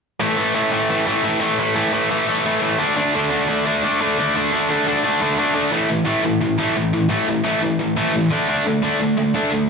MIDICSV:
0, 0, Header, 1, 2, 480
1, 0, Start_track
1, 0, Tempo, 345224
1, 285, Time_signature, 4, 2, 24, 8
1, 13481, End_track
2, 0, Start_track
2, 0, Title_t, "Distorted electric guitar"
2, 0, Program_c, 0, 30
2, 278, Note_on_c, 0, 45, 78
2, 284, Note_on_c, 0, 52, 86
2, 299, Note_on_c, 0, 57, 92
2, 511, Note_off_c, 0, 57, 0
2, 516, Note_on_c, 0, 57, 84
2, 520, Note_off_c, 0, 52, 0
2, 526, Note_on_c, 0, 52, 75
2, 535, Note_off_c, 0, 45, 0
2, 540, Note_on_c, 0, 45, 73
2, 756, Note_off_c, 0, 45, 0
2, 761, Note_on_c, 0, 45, 75
2, 763, Note_off_c, 0, 52, 0
2, 769, Note_on_c, 0, 52, 77
2, 776, Note_off_c, 0, 57, 0
2, 781, Note_on_c, 0, 57, 81
2, 996, Note_off_c, 0, 52, 0
2, 997, Note_off_c, 0, 57, 0
2, 1002, Note_off_c, 0, 45, 0
2, 1003, Note_on_c, 0, 57, 95
2, 1013, Note_on_c, 0, 52, 99
2, 1018, Note_on_c, 0, 45, 80
2, 1224, Note_off_c, 0, 45, 0
2, 1234, Note_off_c, 0, 52, 0
2, 1241, Note_on_c, 0, 45, 70
2, 1251, Note_on_c, 0, 52, 77
2, 1254, Note_off_c, 0, 57, 0
2, 1260, Note_on_c, 0, 57, 83
2, 1474, Note_off_c, 0, 57, 0
2, 1480, Note_on_c, 0, 57, 89
2, 1485, Note_off_c, 0, 45, 0
2, 1486, Note_off_c, 0, 52, 0
2, 1502, Note_on_c, 0, 45, 78
2, 1502, Note_on_c, 0, 52, 84
2, 1697, Note_off_c, 0, 45, 0
2, 1705, Note_off_c, 0, 52, 0
2, 1713, Note_on_c, 0, 45, 90
2, 1722, Note_on_c, 0, 52, 95
2, 1729, Note_off_c, 0, 57, 0
2, 1735, Note_on_c, 0, 57, 97
2, 1946, Note_off_c, 0, 52, 0
2, 1946, Note_off_c, 0, 57, 0
2, 1951, Note_on_c, 0, 57, 89
2, 1959, Note_off_c, 0, 45, 0
2, 1963, Note_on_c, 0, 52, 73
2, 1976, Note_on_c, 0, 45, 67
2, 2181, Note_off_c, 0, 45, 0
2, 2196, Note_off_c, 0, 52, 0
2, 2197, Note_on_c, 0, 45, 83
2, 2210, Note_off_c, 0, 57, 0
2, 2212, Note_on_c, 0, 52, 93
2, 2216, Note_on_c, 0, 57, 91
2, 2431, Note_off_c, 0, 52, 0
2, 2435, Note_off_c, 0, 57, 0
2, 2440, Note_on_c, 0, 57, 89
2, 2443, Note_off_c, 0, 45, 0
2, 2448, Note_on_c, 0, 52, 77
2, 2459, Note_on_c, 0, 45, 68
2, 2657, Note_off_c, 0, 45, 0
2, 2674, Note_off_c, 0, 52, 0
2, 2674, Note_on_c, 0, 45, 70
2, 2688, Note_off_c, 0, 57, 0
2, 2690, Note_on_c, 0, 52, 74
2, 2694, Note_on_c, 0, 57, 84
2, 2913, Note_off_c, 0, 52, 0
2, 2919, Note_off_c, 0, 57, 0
2, 2924, Note_off_c, 0, 45, 0
2, 2924, Note_on_c, 0, 57, 102
2, 2930, Note_on_c, 0, 52, 95
2, 2940, Note_on_c, 0, 45, 78
2, 3144, Note_off_c, 0, 45, 0
2, 3160, Note_on_c, 0, 45, 72
2, 3162, Note_off_c, 0, 52, 0
2, 3178, Note_on_c, 0, 52, 82
2, 3179, Note_off_c, 0, 57, 0
2, 3184, Note_on_c, 0, 57, 84
2, 3409, Note_off_c, 0, 52, 0
2, 3411, Note_off_c, 0, 57, 0
2, 3416, Note_on_c, 0, 57, 83
2, 3423, Note_off_c, 0, 45, 0
2, 3425, Note_on_c, 0, 52, 77
2, 3440, Note_on_c, 0, 45, 67
2, 3621, Note_off_c, 0, 45, 0
2, 3630, Note_off_c, 0, 52, 0
2, 3638, Note_on_c, 0, 45, 90
2, 3647, Note_on_c, 0, 52, 89
2, 3651, Note_off_c, 0, 57, 0
2, 3656, Note_on_c, 0, 57, 93
2, 3867, Note_off_c, 0, 45, 0
2, 3872, Note_on_c, 0, 50, 80
2, 3873, Note_off_c, 0, 52, 0
2, 3883, Note_off_c, 0, 57, 0
2, 3883, Note_on_c, 0, 57, 97
2, 3889, Note_on_c, 0, 62, 99
2, 4114, Note_off_c, 0, 62, 0
2, 4120, Note_off_c, 0, 57, 0
2, 4120, Note_on_c, 0, 62, 96
2, 4126, Note_on_c, 0, 57, 83
2, 4128, Note_off_c, 0, 50, 0
2, 4134, Note_on_c, 0, 50, 84
2, 4360, Note_off_c, 0, 50, 0
2, 4366, Note_on_c, 0, 50, 80
2, 4374, Note_off_c, 0, 57, 0
2, 4379, Note_on_c, 0, 57, 76
2, 4388, Note_off_c, 0, 62, 0
2, 4394, Note_on_c, 0, 62, 87
2, 4590, Note_off_c, 0, 62, 0
2, 4595, Note_on_c, 0, 62, 85
2, 4602, Note_off_c, 0, 57, 0
2, 4608, Note_on_c, 0, 57, 79
2, 4609, Note_off_c, 0, 50, 0
2, 4614, Note_on_c, 0, 50, 64
2, 4842, Note_off_c, 0, 50, 0
2, 4846, Note_off_c, 0, 57, 0
2, 4847, Note_on_c, 0, 50, 85
2, 4850, Note_off_c, 0, 62, 0
2, 4851, Note_on_c, 0, 57, 116
2, 4856, Note_on_c, 0, 62, 113
2, 5072, Note_off_c, 0, 62, 0
2, 5089, Note_on_c, 0, 62, 79
2, 5093, Note_off_c, 0, 50, 0
2, 5094, Note_off_c, 0, 57, 0
2, 5100, Note_on_c, 0, 57, 72
2, 5110, Note_on_c, 0, 50, 68
2, 5311, Note_off_c, 0, 50, 0
2, 5328, Note_on_c, 0, 50, 72
2, 5334, Note_off_c, 0, 62, 0
2, 5343, Note_off_c, 0, 57, 0
2, 5348, Note_on_c, 0, 57, 87
2, 5350, Note_on_c, 0, 62, 74
2, 5561, Note_off_c, 0, 62, 0
2, 5574, Note_off_c, 0, 57, 0
2, 5578, Note_on_c, 0, 62, 85
2, 5579, Note_off_c, 0, 50, 0
2, 5579, Note_on_c, 0, 57, 90
2, 5595, Note_on_c, 0, 50, 83
2, 5798, Note_off_c, 0, 50, 0
2, 5815, Note_on_c, 0, 50, 80
2, 5825, Note_off_c, 0, 62, 0
2, 5826, Note_off_c, 0, 57, 0
2, 5832, Note_on_c, 0, 57, 78
2, 5842, Note_on_c, 0, 62, 84
2, 6045, Note_off_c, 0, 62, 0
2, 6057, Note_off_c, 0, 57, 0
2, 6062, Note_on_c, 0, 62, 88
2, 6063, Note_off_c, 0, 50, 0
2, 6074, Note_on_c, 0, 57, 78
2, 6080, Note_on_c, 0, 50, 77
2, 6269, Note_off_c, 0, 50, 0
2, 6285, Note_on_c, 0, 50, 80
2, 6290, Note_off_c, 0, 57, 0
2, 6297, Note_off_c, 0, 62, 0
2, 6306, Note_on_c, 0, 57, 84
2, 6313, Note_on_c, 0, 62, 80
2, 6506, Note_off_c, 0, 62, 0
2, 6522, Note_off_c, 0, 57, 0
2, 6522, Note_on_c, 0, 62, 85
2, 6528, Note_off_c, 0, 50, 0
2, 6539, Note_on_c, 0, 57, 80
2, 6545, Note_on_c, 0, 50, 60
2, 6749, Note_off_c, 0, 50, 0
2, 6753, Note_off_c, 0, 57, 0
2, 6766, Note_on_c, 0, 50, 98
2, 6768, Note_off_c, 0, 62, 0
2, 6770, Note_on_c, 0, 57, 106
2, 6785, Note_on_c, 0, 62, 112
2, 6987, Note_off_c, 0, 62, 0
2, 6998, Note_off_c, 0, 57, 0
2, 7003, Note_off_c, 0, 50, 0
2, 7004, Note_on_c, 0, 62, 92
2, 7015, Note_on_c, 0, 57, 77
2, 7020, Note_on_c, 0, 50, 73
2, 7229, Note_off_c, 0, 50, 0
2, 7236, Note_off_c, 0, 57, 0
2, 7246, Note_off_c, 0, 62, 0
2, 7246, Note_on_c, 0, 50, 81
2, 7253, Note_on_c, 0, 57, 82
2, 7263, Note_on_c, 0, 62, 75
2, 7472, Note_off_c, 0, 62, 0
2, 7487, Note_off_c, 0, 57, 0
2, 7489, Note_on_c, 0, 62, 90
2, 7495, Note_off_c, 0, 50, 0
2, 7503, Note_on_c, 0, 57, 88
2, 7511, Note_on_c, 0, 50, 70
2, 7694, Note_off_c, 0, 50, 0
2, 7701, Note_off_c, 0, 57, 0
2, 7709, Note_off_c, 0, 62, 0
2, 7711, Note_on_c, 0, 50, 75
2, 7718, Note_on_c, 0, 57, 85
2, 7725, Note_on_c, 0, 62, 87
2, 7939, Note_off_c, 0, 50, 0
2, 7945, Note_on_c, 0, 45, 93
2, 7949, Note_off_c, 0, 57, 0
2, 7953, Note_off_c, 0, 62, 0
2, 7957, Note_on_c, 0, 52, 87
2, 7970, Note_on_c, 0, 57, 89
2, 8175, Note_off_c, 0, 45, 0
2, 8188, Note_off_c, 0, 52, 0
2, 8192, Note_on_c, 0, 45, 72
2, 8195, Note_off_c, 0, 57, 0
2, 8204, Note_on_c, 0, 52, 75
2, 8395, Note_off_c, 0, 45, 0
2, 8407, Note_off_c, 0, 52, 0
2, 8411, Note_on_c, 0, 45, 75
2, 8424, Note_on_c, 0, 52, 90
2, 8435, Note_on_c, 0, 57, 95
2, 8656, Note_off_c, 0, 45, 0
2, 8657, Note_off_c, 0, 52, 0
2, 8667, Note_off_c, 0, 57, 0
2, 8673, Note_on_c, 0, 45, 76
2, 8674, Note_on_c, 0, 52, 80
2, 8897, Note_off_c, 0, 45, 0
2, 8897, Note_off_c, 0, 52, 0
2, 8914, Note_on_c, 0, 45, 76
2, 8922, Note_on_c, 0, 52, 74
2, 9137, Note_off_c, 0, 45, 0
2, 9141, Note_off_c, 0, 52, 0
2, 9153, Note_on_c, 0, 45, 82
2, 9170, Note_on_c, 0, 52, 90
2, 9176, Note_on_c, 0, 57, 82
2, 9386, Note_off_c, 0, 45, 0
2, 9395, Note_off_c, 0, 52, 0
2, 9398, Note_off_c, 0, 57, 0
2, 9409, Note_on_c, 0, 45, 71
2, 9409, Note_on_c, 0, 52, 81
2, 9622, Note_off_c, 0, 45, 0
2, 9625, Note_off_c, 0, 52, 0
2, 9639, Note_on_c, 0, 45, 64
2, 9643, Note_on_c, 0, 52, 74
2, 9842, Note_off_c, 0, 45, 0
2, 9849, Note_off_c, 0, 52, 0
2, 9858, Note_on_c, 0, 45, 83
2, 9866, Note_on_c, 0, 52, 85
2, 9879, Note_on_c, 0, 57, 98
2, 10099, Note_off_c, 0, 45, 0
2, 10103, Note_off_c, 0, 52, 0
2, 10109, Note_off_c, 0, 57, 0
2, 10119, Note_on_c, 0, 45, 69
2, 10127, Note_on_c, 0, 52, 76
2, 10324, Note_off_c, 0, 45, 0
2, 10334, Note_off_c, 0, 52, 0
2, 10341, Note_on_c, 0, 45, 74
2, 10351, Note_on_c, 0, 52, 89
2, 10360, Note_on_c, 0, 57, 86
2, 10572, Note_off_c, 0, 45, 0
2, 10582, Note_off_c, 0, 52, 0
2, 10589, Note_off_c, 0, 57, 0
2, 10589, Note_on_c, 0, 45, 73
2, 10598, Note_on_c, 0, 52, 92
2, 10814, Note_off_c, 0, 45, 0
2, 10819, Note_off_c, 0, 52, 0
2, 10835, Note_on_c, 0, 45, 78
2, 10835, Note_on_c, 0, 52, 68
2, 11057, Note_off_c, 0, 45, 0
2, 11057, Note_off_c, 0, 52, 0
2, 11072, Note_on_c, 0, 45, 81
2, 11080, Note_on_c, 0, 52, 88
2, 11092, Note_on_c, 0, 57, 84
2, 11291, Note_off_c, 0, 45, 0
2, 11294, Note_off_c, 0, 52, 0
2, 11308, Note_on_c, 0, 45, 70
2, 11310, Note_on_c, 0, 52, 80
2, 11316, Note_off_c, 0, 57, 0
2, 11534, Note_off_c, 0, 45, 0
2, 11535, Note_off_c, 0, 52, 0
2, 11547, Note_on_c, 0, 50, 83
2, 11564, Note_on_c, 0, 57, 89
2, 11574, Note_on_c, 0, 62, 87
2, 11773, Note_off_c, 0, 50, 0
2, 11785, Note_off_c, 0, 57, 0
2, 11790, Note_on_c, 0, 50, 81
2, 11791, Note_off_c, 0, 62, 0
2, 11801, Note_on_c, 0, 57, 88
2, 11807, Note_on_c, 0, 62, 90
2, 12019, Note_off_c, 0, 50, 0
2, 12030, Note_off_c, 0, 57, 0
2, 12033, Note_off_c, 0, 62, 0
2, 12036, Note_on_c, 0, 50, 68
2, 12045, Note_on_c, 0, 57, 81
2, 12251, Note_off_c, 0, 50, 0
2, 12262, Note_off_c, 0, 57, 0
2, 12268, Note_on_c, 0, 50, 79
2, 12280, Note_on_c, 0, 57, 74
2, 12291, Note_on_c, 0, 62, 80
2, 12493, Note_off_c, 0, 50, 0
2, 12499, Note_off_c, 0, 57, 0
2, 12510, Note_on_c, 0, 50, 80
2, 12514, Note_off_c, 0, 62, 0
2, 12515, Note_on_c, 0, 57, 83
2, 12734, Note_off_c, 0, 50, 0
2, 12737, Note_off_c, 0, 57, 0
2, 12753, Note_on_c, 0, 50, 66
2, 12758, Note_on_c, 0, 57, 80
2, 12972, Note_off_c, 0, 50, 0
2, 12978, Note_off_c, 0, 57, 0
2, 12989, Note_on_c, 0, 50, 76
2, 13001, Note_on_c, 0, 57, 88
2, 13007, Note_on_c, 0, 62, 85
2, 13205, Note_off_c, 0, 50, 0
2, 13215, Note_off_c, 0, 57, 0
2, 13222, Note_on_c, 0, 50, 66
2, 13232, Note_off_c, 0, 62, 0
2, 13232, Note_on_c, 0, 57, 77
2, 13450, Note_off_c, 0, 50, 0
2, 13455, Note_off_c, 0, 57, 0
2, 13481, End_track
0, 0, End_of_file